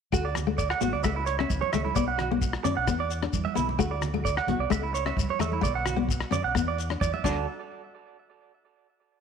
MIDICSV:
0, 0, Header, 1, 7, 480
1, 0, Start_track
1, 0, Key_signature, 2, "major"
1, 0, Tempo, 459067
1, 137, Time_signature, 4, 2, 24, 8
1, 9624, End_track
2, 0, Start_track
2, 0, Title_t, "Clean electric guitar"
2, 0, Program_c, 0, 27
2, 138, Note_on_c, 0, 66, 83
2, 250, Note_off_c, 0, 66, 0
2, 259, Note_on_c, 0, 74, 67
2, 362, Note_off_c, 0, 74, 0
2, 608, Note_on_c, 0, 74, 73
2, 724, Note_off_c, 0, 74, 0
2, 735, Note_on_c, 0, 78, 79
2, 839, Note_off_c, 0, 78, 0
2, 844, Note_on_c, 0, 66, 68
2, 962, Note_off_c, 0, 66, 0
2, 971, Note_on_c, 0, 74, 76
2, 1077, Note_off_c, 0, 74, 0
2, 1087, Note_on_c, 0, 76, 92
2, 1203, Note_off_c, 0, 76, 0
2, 1215, Note_on_c, 0, 64, 68
2, 1317, Note_off_c, 0, 64, 0
2, 1321, Note_on_c, 0, 73, 78
2, 1439, Note_off_c, 0, 73, 0
2, 1451, Note_on_c, 0, 76, 74
2, 1556, Note_off_c, 0, 76, 0
2, 1687, Note_on_c, 0, 73, 71
2, 1793, Note_off_c, 0, 73, 0
2, 1808, Note_on_c, 0, 76, 81
2, 1923, Note_off_c, 0, 76, 0
2, 1931, Note_on_c, 0, 64, 68
2, 2035, Note_off_c, 0, 64, 0
2, 2049, Note_on_c, 0, 74, 93
2, 2163, Note_off_c, 0, 74, 0
2, 2172, Note_on_c, 0, 78, 65
2, 2275, Note_off_c, 0, 78, 0
2, 2280, Note_on_c, 0, 66, 75
2, 2397, Note_off_c, 0, 66, 0
2, 2764, Note_on_c, 0, 74, 75
2, 2879, Note_off_c, 0, 74, 0
2, 2893, Note_on_c, 0, 78, 77
2, 2995, Note_off_c, 0, 78, 0
2, 3137, Note_on_c, 0, 74, 70
2, 3237, Note_off_c, 0, 74, 0
2, 3606, Note_on_c, 0, 76, 77
2, 3710, Note_off_c, 0, 76, 0
2, 3721, Note_on_c, 0, 64, 78
2, 3836, Note_off_c, 0, 64, 0
2, 3965, Note_on_c, 0, 66, 87
2, 4078, Note_off_c, 0, 66, 0
2, 4090, Note_on_c, 0, 74, 69
2, 4191, Note_off_c, 0, 74, 0
2, 4442, Note_on_c, 0, 74, 82
2, 4556, Note_off_c, 0, 74, 0
2, 4576, Note_on_c, 0, 78, 76
2, 4674, Note_off_c, 0, 78, 0
2, 4688, Note_on_c, 0, 66, 69
2, 4799, Note_off_c, 0, 66, 0
2, 4812, Note_on_c, 0, 74, 75
2, 4912, Note_off_c, 0, 74, 0
2, 4928, Note_on_c, 0, 76, 86
2, 5039, Note_off_c, 0, 76, 0
2, 5052, Note_on_c, 0, 64, 68
2, 5152, Note_off_c, 0, 64, 0
2, 5167, Note_on_c, 0, 73, 81
2, 5278, Note_off_c, 0, 73, 0
2, 5295, Note_on_c, 0, 76, 82
2, 5394, Note_off_c, 0, 76, 0
2, 5544, Note_on_c, 0, 73, 75
2, 5639, Note_off_c, 0, 73, 0
2, 5657, Note_on_c, 0, 76, 84
2, 5764, Note_off_c, 0, 76, 0
2, 5782, Note_on_c, 0, 64, 69
2, 5878, Note_off_c, 0, 64, 0
2, 5890, Note_on_c, 0, 74, 88
2, 6000, Note_off_c, 0, 74, 0
2, 6016, Note_on_c, 0, 78, 72
2, 6115, Note_off_c, 0, 78, 0
2, 6131, Note_on_c, 0, 66, 68
2, 6241, Note_off_c, 0, 66, 0
2, 6613, Note_on_c, 0, 74, 76
2, 6722, Note_off_c, 0, 74, 0
2, 6737, Note_on_c, 0, 78, 75
2, 6836, Note_off_c, 0, 78, 0
2, 6985, Note_on_c, 0, 74, 66
2, 7081, Note_off_c, 0, 74, 0
2, 7332, Note_on_c, 0, 74, 84
2, 7443, Note_off_c, 0, 74, 0
2, 7462, Note_on_c, 0, 76, 77
2, 7560, Note_off_c, 0, 76, 0
2, 7574, Note_on_c, 0, 74, 84
2, 7579, Note_on_c, 0, 69, 64
2, 7583, Note_on_c, 0, 66, 65
2, 7797, Note_off_c, 0, 69, 0
2, 7797, Note_off_c, 0, 74, 0
2, 7798, Note_off_c, 0, 66, 0
2, 9624, End_track
3, 0, Start_track
3, 0, Title_t, "Steel-string acoustic guitar"
3, 0, Program_c, 1, 25
3, 129, Note_on_c, 1, 57, 88
3, 256, Note_off_c, 1, 57, 0
3, 489, Note_on_c, 1, 57, 66
3, 618, Note_off_c, 1, 57, 0
3, 851, Note_on_c, 1, 59, 73
3, 977, Note_off_c, 1, 59, 0
3, 1093, Note_on_c, 1, 57, 80
3, 1218, Note_off_c, 1, 57, 0
3, 1464, Note_on_c, 1, 61, 69
3, 1588, Note_off_c, 1, 61, 0
3, 1823, Note_on_c, 1, 57, 70
3, 1946, Note_off_c, 1, 57, 0
3, 2052, Note_on_c, 1, 59, 84
3, 2177, Note_off_c, 1, 59, 0
3, 2419, Note_on_c, 1, 59, 73
3, 2544, Note_off_c, 1, 59, 0
3, 2768, Note_on_c, 1, 61, 70
3, 2893, Note_off_c, 1, 61, 0
3, 3011, Note_on_c, 1, 59, 90
3, 3135, Note_off_c, 1, 59, 0
3, 3371, Note_on_c, 1, 62, 75
3, 3496, Note_off_c, 1, 62, 0
3, 3715, Note_on_c, 1, 59, 73
3, 3843, Note_off_c, 1, 59, 0
3, 3959, Note_on_c, 1, 57, 92
3, 4086, Note_off_c, 1, 57, 0
3, 4326, Note_on_c, 1, 57, 73
3, 4452, Note_off_c, 1, 57, 0
3, 4686, Note_on_c, 1, 59, 74
3, 4811, Note_off_c, 1, 59, 0
3, 4915, Note_on_c, 1, 57, 88
3, 5043, Note_off_c, 1, 57, 0
3, 5287, Note_on_c, 1, 61, 73
3, 5413, Note_off_c, 1, 61, 0
3, 5639, Note_on_c, 1, 57, 74
3, 5766, Note_off_c, 1, 57, 0
3, 6236, Note_on_c, 1, 59, 73
3, 6366, Note_off_c, 1, 59, 0
3, 6594, Note_on_c, 1, 61, 68
3, 6723, Note_off_c, 1, 61, 0
3, 6848, Note_on_c, 1, 59, 82
3, 6973, Note_off_c, 1, 59, 0
3, 7215, Note_on_c, 1, 62, 69
3, 7340, Note_off_c, 1, 62, 0
3, 7577, Note_on_c, 1, 62, 75
3, 7719, Note_off_c, 1, 62, 0
3, 9624, End_track
4, 0, Start_track
4, 0, Title_t, "Fingered electric bass"
4, 0, Program_c, 2, 33
4, 131, Note_on_c, 2, 38, 87
4, 753, Note_off_c, 2, 38, 0
4, 849, Note_on_c, 2, 33, 83
4, 960, Note_off_c, 2, 33, 0
4, 971, Note_on_c, 2, 38, 74
4, 1073, Note_off_c, 2, 38, 0
4, 1091, Note_on_c, 2, 37, 100
4, 1505, Note_off_c, 2, 37, 0
4, 1569, Note_on_c, 2, 37, 90
4, 1680, Note_off_c, 2, 37, 0
4, 1813, Note_on_c, 2, 37, 83
4, 2019, Note_off_c, 2, 37, 0
4, 2045, Note_on_c, 2, 35, 91
4, 2666, Note_off_c, 2, 35, 0
4, 2766, Note_on_c, 2, 42, 78
4, 2876, Note_off_c, 2, 42, 0
4, 2900, Note_on_c, 2, 35, 85
4, 2995, Note_off_c, 2, 35, 0
4, 3006, Note_on_c, 2, 40, 91
4, 3419, Note_off_c, 2, 40, 0
4, 3484, Note_on_c, 2, 40, 90
4, 3594, Note_off_c, 2, 40, 0
4, 3727, Note_on_c, 2, 35, 92
4, 3933, Note_off_c, 2, 35, 0
4, 3963, Note_on_c, 2, 38, 96
4, 4583, Note_off_c, 2, 38, 0
4, 4673, Note_on_c, 2, 33, 82
4, 4787, Note_off_c, 2, 33, 0
4, 4797, Note_on_c, 2, 36, 83
4, 4900, Note_off_c, 2, 36, 0
4, 4923, Note_on_c, 2, 37, 103
4, 5337, Note_off_c, 2, 37, 0
4, 5403, Note_on_c, 2, 37, 96
4, 5512, Note_off_c, 2, 37, 0
4, 5638, Note_on_c, 2, 40, 82
4, 5847, Note_off_c, 2, 40, 0
4, 5884, Note_on_c, 2, 35, 94
4, 6505, Note_off_c, 2, 35, 0
4, 6601, Note_on_c, 2, 42, 87
4, 6712, Note_off_c, 2, 42, 0
4, 6738, Note_on_c, 2, 35, 76
4, 6833, Note_off_c, 2, 35, 0
4, 6849, Note_on_c, 2, 40, 93
4, 7262, Note_off_c, 2, 40, 0
4, 7328, Note_on_c, 2, 40, 91
4, 7437, Note_off_c, 2, 40, 0
4, 7569, Note_on_c, 2, 38, 91
4, 7793, Note_off_c, 2, 38, 0
4, 9624, End_track
5, 0, Start_track
5, 0, Title_t, "Muted steel-string acoustic guitar strokes"
5, 5868, Note_on_c, 9, 29, 87
5, 5973, Note_off_c, 9, 29, 0
5, 9624, End_track
6, 0, Start_track
6, 0, Title_t, "Shekere"
6, 142, Note_on_c, 9, 82, 98
6, 247, Note_off_c, 9, 82, 0
6, 384, Note_on_c, 9, 82, 67
6, 489, Note_off_c, 9, 82, 0
6, 612, Note_on_c, 9, 82, 93
6, 717, Note_off_c, 9, 82, 0
6, 849, Note_on_c, 9, 82, 70
6, 954, Note_off_c, 9, 82, 0
6, 1084, Note_on_c, 9, 82, 87
6, 1189, Note_off_c, 9, 82, 0
6, 1323, Note_on_c, 9, 82, 72
6, 1427, Note_off_c, 9, 82, 0
6, 1572, Note_on_c, 9, 82, 85
6, 1677, Note_off_c, 9, 82, 0
6, 1812, Note_on_c, 9, 82, 70
6, 1917, Note_off_c, 9, 82, 0
6, 2048, Note_on_c, 9, 82, 94
6, 2152, Note_off_c, 9, 82, 0
6, 2530, Note_on_c, 9, 82, 93
6, 2634, Note_off_c, 9, 82, 0
6, 2771, Note_on_c, 9, 82, 70
6, 2876, Note_off_c, 9, 82, 0
6, 3006, Note_on_c, 9, 82, 94
6, 3111, Note_off_c, 9, 82, 0
6, 3249, Note_on_c, 9, 82, 67
6, 3354, Note_off_c, 9, 82, 0
6, 3486, Note_on_c, 9, 82, 87
6, 3590, Note_off_c, 9, 82, 0
6, 3731, Note_on_c, 9, 82, 72
6, 3835, Note_off_c, 9, 82, 0
6, 3971, Note_on_c, 9, 82, 95
6, 4075, Note_off_c, 9, 82, 0
6, 4201, Note_on_c, 9, 82, 71
6, 4306, Note_off_c, 9, 82, 0
6, 4454, Note_on_c, 9, 82, 98
6, 4559, Note_off_c, 9, 82, 0
6, 4931, Note_on_c, 9, 82, 100
6, 5036, Note_off_c, 9, 82, 0
6, 5177, Note_on_c, 9, 82, 77
6, 5281, Note_off_c, 9, 82, 0
6, 5427, Note_on_c, 9, 82, 97
6, 5531, Note_off_c, 9, 82, 0
6, 5660, Note_on_c, 9, 82, 81
6, 5764, Note_off_c, 9, 82, 0
6, 5900, Note_on_c, 9, 82, 103
6, 6004, Note_off_c, 9, 82, 0
6, 6137, Note_on_c, 9, 82, 73
6, 6242, Note_off_c, 9, 82, 0
6, 6385, Note_on_c, 9, 82, 106
6, 6490, Note_off_c, 9, 82, 0
6, 6617, Note_on_c, 9, 82, 73
6, 6722, Note_off_c, 9, 82, 0
6, 6869, Note_on_c, 9, 82, 94
6, 6974, Note_off_c, 9, 82, 0
6, 7110, Note_on_c, 9, 82, 69
6, 7215, Note_off_c, 9, 82, 0
6, 7348, Note_on_c, 9, 82, 91
6, 7453, Note_off_c, 9, 82, 0
6, 7588, Note_on_c, 9, 82, 80
6, 7693, Note_off_c, 9, 82, 0
6, 9624, End_track
7, 0, Start_track
7, 0, Title_t, "Drums"
7, 132, Note_on_c, 9, 36, 90
7, 236, Note_off_c, 9, 36, 0
7, 367, Note_on_c, 9, 37, 73
7, 367, Note_on_c, 9, 42, 52
7, 375, Note_on_c, 9, 64, 61
7, 471, Note_off_c, 9, 37, 0
7, 471, Note_off_c, 9, 42, 0
7, 480, Note_off_c, 9, 64, 0
7, 611, Note_on_c, 9, 36, 84
7, 716, Note_off_c, 9, 36, 0
7, 733, Note_on_c, 9, 37, 70
7, 838, Note_off_c, 9, 37, 0
7, 847, Note_on_c, 9, 63, 65
7, 850, Note_on_c, 9, 42, 53
7, 952, Note_off_c, 9, 63, 0
7, 955, Note_off_c, 9, 42, 0
7, 1090, Note_on_c, 9, 36, 85
7, 1092, Note_on_c, 9, 37, 69
7, 1194, Note_off_c, 9, 36, 0
7, 1196, Note_off_c, 9, 37, 0
7, 1329, Note_on_c, 9, 42, 54
7, 1434, Note_off_c, 9, 42, 0
7, 1452, Note_on_c, 9, 37, 68
7, 1557, Note_off_c, 9, 37, 0
7, 1569, Note_on_c, 9, 36, 85
7, 1570, Note_on_c, 9, 63, 72
7, 1673, Note_off_c, 9, 36, 0
7, 1675, Note_off_c, 9, 63, 0
7, 1697, Note_on_c, 9, 63, 68
7, 1802, Note_off_c, 9, 63, 0
7, 1807, Note_on_c, 9, 37, 68
7, 1807, Note_on_c, 9, 42, 49
7, 1818, Note_on_c, 9, 64, 64
7, 1911, Note_off_c, 9, 37, 0
7, 1911, Note_off_c, 9, 42, 0
7, 1922, Note_off_c, 9, 64, 0
7, 1944, Note_on_c, 9, 63, 68
7, 2047, Note_on_c, 9, 36, 93
7, 2048, Note_off_c, 9, 63, 0
7, 2152, Note_off_c, 9, 36, 0
7, 2288, Note_on_c, 9, 37, 68
7, 2288, Note_on_c, 9, 42, 51
7, 2301, Note_on_c, 9, 64, 58
7, 2392, Note_off_c, 9, 37, 0
7, 2392, Note_off_c, 9, 42, 0
7, 2405, Note_off_c, 9, 64, 0
7, 2420, Note_on_c, 9, 63, 74
7, 2524, Note_off_c, 9, 63, 0
7, 2526, Note_on_c, 9, 36, 89
7, 2630, Note_off_c, 9, 36, 0
7, 2649, Note_on_c, 9, 37, 67
7, 2753, Note_off_c, 9, 37, 0
7, 2768, Note_on_c, 9, 42, 49
7, 2768, Note_on_c, 9, 64, 69
7, 2872, Note_off_c, 9, 42, 0
7, 2873, Note_off_c, 9, 64, 0
7, 3006, Note_on_c, 9, 37, 70
7, 3007, Note_on_c, 9, 36, 86
7, 3111, Note_off_c, 9, 36, 0
7, 3111, Note_off_c, 9, 37, 0
7, 3247, Note_on_c, 9, 42, 50
7, 3351, Note_off_c, 9, 42, 0
7, 3374, Note_on_c, 9, 37, 69
7, 3478, Note_off_c, 9, 37, 0
7, 3484, Note_on_c, 9, 63, 71
7, 3486, Note_on_c, 9, 36, 92
7, 3588, Note_off_c, 9, 63, 0
7, 3590, Note_off_c, 9, 36, 0
7, 3616, Note_on_c, 9, 63, 66
7, 3721, Note_off_c, 9, 63, 0
7, 3727, Note_on_c, 9, 42, 51
7, 3736, Note_on_c, 9, 64, 70
7, 3832, Note_off_c, 9, 42, 0
7, 3841, Note_off_c, 9, 64, 0
7, 3857, Note_on_c, 9, 63, 76
7, 3962, Note_off_c, 9, 63, 0
7, 3964, Note_on_c, 9, 36, 88
7, 4069, Note_off_c, 9, 36, 0
7, 4204, Note_on_c, 9, 37, 67
7, 4204, Note_on_c, 9, 42, 53
7, 4204, Note_on_c, 9, 64, 62
7, 4308, Note_off_c, 9, 37, 0
7, 4308, Note_off_c, 9, 42, 0
7, 4308, Note_off_c, 9, 64, 0
7, 4332, Note_on_c, 9, 63, 76
7, 4437, Note_off_c, 9, 63, 0
7, 4444, Note_on_c, 9, 36, 87
7, 4549, Note_off_c, 9, 36, 0
7, 4572, Note_on_c, 9, 37, 68
7, 4676, Note_off_c, 9, 37, 0
7, 4684, Note_on_c, 9, 63, 68
7, 4684, Note_on_c, 9, 64, 68
7, 4686, Note_on_c, 9, 42, 53
7, 4789, Note_off_c, 9, 63, 0
7, 4789, Note_off_c, 9, 64, 0
7, 4791, Note_off_c, 9, 42, 0
7, 4924, Note_on_c, 9, 36, 89
7, 4929, Note_on_c, 9, 37, 74
7, 5029, Note_off_c, 9, 36, 0
7, 5034, Note_off_c, 9, 37, 0
7, 5172, Note_on_c, 9, 42, 54
7, 5277, Note_off_c, 9, 42, 0
7, 5290, Note_on_c, 9, 37, 64
7, 5395, Note_off_c, 9, 37, 0
7, 5403, Note_on_c, 9, 36, 92
7, 5410, Note_on_c, 9, 63, 72
7, 5508, Note_off_c, 9, 36, 0
7, 5514, Note_off_c, 9, 63, 0
7, 5534, Note_on_c, 9, 63, 69
7, 5639, Note_off_c, 9, 63, 0
7, 5645, Note_on_c, 9, 64, 64
7, 5646, Note_on_c, 9, 37, 68
7, 5646, Note_on_c, 9, 42, 52
7, 5749, Note_off_c, 9, 64, 0
7, 5751, Note_off_c, 9, 37, 0
7, 5751, Note_off_c, 9, 42, 0
7, 5770, Note_on_c, 9, 63, 67
7, 5875, Note_off_c, 9, 63, 0
7, 5883, Note_on_c, 9, 36, 89
7, 5887, Note_on_c, 9, 64, 65
7, 5988, Note_off_c, 9, 36, 0
7, 5991, Note_off_c, 9, 64, 0
7, 6123, Note_on_c, 9, 37, 72
7, 6123, Note_on_c, 9, 42, 55
7, 6134, Note_on_c, 9, 64, 59
7, 6227, Note_off_c, 9, 37, 0
7, 6227, Note_off_c, 9, 42, 0
7, 6239, Note_off_c, 9, 64, 0
7, 6250, Note_on_c, 9, 63, 72
7, 6355, Note_off_c, 9, 63, 0
7, 6364, Note_on_c, 9, 36, 90
7, 6469, Note_off_c, 9, 36, 0
7, 6488, Note_on_c, 9, 37, 68
7, 6592, Note_off_c, 9, 37, 0
7, 6607, Note_on_c, 9, 42, 51
7, 6615, Note_on_c, 9, 63, 64
7, 6615, Note_on_c, 9, 64, 72
7, 6711, Note_off_c, 9, 42, 0
7, 6719, Note_off_c, 9, 63, 0
7, 6719, Note_off_c, 9, 64, 0
7, 6848, Note_on_c, 9, 36, 85
7, 6848, Note_on_c, 9, 37, 69
7, 6952, Note_off_c, 9, 36, 0
7, 6953, Note_off_c, 9, 37, 0
7, 7093, Note_on_c, 9, 42, 48
7, 7198, Note_off_c, 9, 42, 0
7, 7218, Note_on_c, 9, 37, 68
7, 7322, Note_off_c, 9, 37, 0
7, 7332, Note_on_c, 9, 36, 93
7, 7333, Note_on_c, 9, 63, 75
7, 7436, Note_off_c, 9, 36, 0
7, 7437, Note_off_c, 9, 63, 0
7, 7462, Note_on_c, 9, 63, 67
7, 7566, Note_off_c, 9, 63, 0
7, 7570, Note_on_c, 9, 49, 72
7, 7570, Note_on_c, 9, 63, 76
7, 7571, Note_on_c, 9, 36, 84
7, 7675, Note_off_c, 9, 49, 0
7, 7675, Note_off_c, 9, 63, 0
7, 7676, Note_off_c, 9, 36, 0
7, 9624, End_track
0, 0, End_of_file